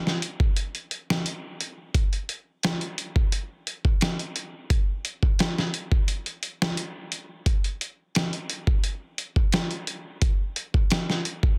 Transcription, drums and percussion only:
0.07 snare soft
0.22 closed hi-hat medium
0.40 kick medium
0.57 closed hi-hat medium
0.75 closed hi-hat soft
0.91 closed hi-hat medium
1.10 snare loud
1.26 closed hi-hat medium
1.61 closed hi-hat medium
1.94 kick loud
1.94 closed hi-hat medium
2.13 closed hi-hat soft
2.29 closed hi-hat medium
2.63 snare loud
2.63 closed hi-hat medium
2.81 closed hi-hat soft
2.98 closed hi-hat medium
3.16 kick medium
3.32 closed hi-hat medium
3.67 closed hi-hat medium
3.85 kick medium
4.01 snare loud
4.01 closed hi-hat medium
4.19 closed hi-hat soft
4.36 closed hi-hat medium
4.70 kick loud
4.70 closed hi-hat medium
5.05 closed hi-hat medium
5.23 kick medium
5.39 snare loud
5.39 closed hi-hat medium
5.58 snare soft
5.74 closed hi-hat medium
5.92 kick medium
6.08 closed hi-hat medium
6.26 closed hi-hat soft
6.43 closed hi-hat medium
6.62 snare loud
6.77 closed hi-hat medium
7.12 closed hi-hat medium
7.46 kick loud
7.46 closed hi-hat medium
7.64 closed hi-hat soft
7.81 closed hi-hat medium
8.15 snare loud
8.15 closed hi-hat medium
8.33 closed hi-hat soft
8.50 closed hi-hat medium
8.67 kick loud
8.84 closed hi-hat medium
9.18 closed hi-hat medium
9.36 kick medium
9.52 snare loud
9.52 closed hi-hat medium
9.71 closed hi-hat soft
9.87 closed hi-hat medium
10.22 kick loud
10.22 closed hi-hat medium
10.56 closed hi-hat medium
10.74 kick medium
10.90 snare loud
10.90 closed hi-hat medium
11.10 snare soft
11.25 closed hi-hat medium
11.43 kick medium

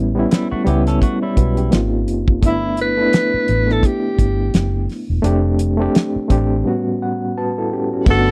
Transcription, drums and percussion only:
0.31 snare loud
0.31 closed hi-hat medium
0.67 closed hi-hat medium
0.87 snare soft
0.87 closed hi-hat soft
1.02 kick medium
1.02 closed hi-hat medium
1.37 kick medium
1.37 closed hi-hat medium
1.57 closed hi-hat soft
1.72 snare loud
1.72 closed hi-hat medium
2.08 closed hi-hat medium
2.28 kick medium
2.43 kick loud
2.43 closed hi-hat medium
2.77 closed hi-hat medium
3.13 snare loud
3.13 closed hi-hat medium
3.48 closed hi-hat medium
3.69 snare soft
3.83 kick medium
3.83 closed hi-hat medium
4.19 kick medium
4.19 closed hi-hat medium
4.54 snare loud
4.54 closed hi-hat medium
4.89 snare soft
4.89 open hi-hat soft
5.24 closed hi-hat medium
5.59 closed hi-hat medium
5.95 snare loud
5.95 closed hi-hat medium
6.30 kick medium
6.30 closed hi-hat medium
8.06 kick loud
8.06 crash loud

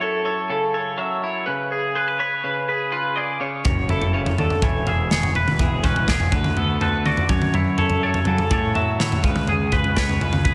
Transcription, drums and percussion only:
3.65 kick loud
3.65 floor tom medium
3.89 floor tom medium
4.02 floor tom medium
4.26 floor tom medium
4.38 floor tom medium
4.50 floor tom medium
4.62 kick loud
4.62 floor tom medium
4.87 floor tom medium
5.11 snare medium
5.11 mid tom medium
5.23 floor tom medium
5.35 floor tom medium
5.48 mid tom medium
5.59 kick medium
5.59 floor tom medium
5.84 kick medium
5.84 floor tom medium
5.96 floor tom medium
6.08 kick medium
6.08 snare medium
6.20 floor tom medium
6.32 kick medium
6.32 floor tom medium
6.44 floor tom medium
6.44 mid tom medium
6.57 floor tom medium
6.81 floor tom medium
7.06 mid tom medium
7.17 floor tom medium
7.29 kick loud
7.29 floor tom medium
7.29 mid tom medium
7.42 mid tom medium
7.54 floor tom medium
7.78 floor tom medium
7.90 floor tom medium
8.14 floor tom medium
8.25 floor tom medium
8.38 floor tom medium
8.51 kick loud
8.51 floor tom medium
8.75 floor tom medium
9.00 snare medium
9.00 mid tom medium
9.12 floor tom medium
9.24 kick medium
9.24 floor tom medium
9.36 mid tom medium
9.47 floor tom medium
9.72 kick medium
9.72 floor tom medium
9.84 floor tom medium
9.97 kick medium
9.97 snare medium
10.09 floor tom medium
10.21 floor tom medium
10.33 floor tom medium
10.33 mid tom medium
10.45 kick medium
10.45 floor tom medium

